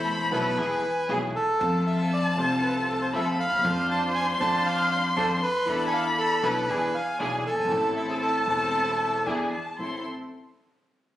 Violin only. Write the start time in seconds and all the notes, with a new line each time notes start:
Already playing: B5
0.57 G#5
1.60 A5
3.14 B5
3.65 C6
5.68 B5
6.70 G#5
7.70 A5
9.26 G#5
9.53 A5
9.79 C6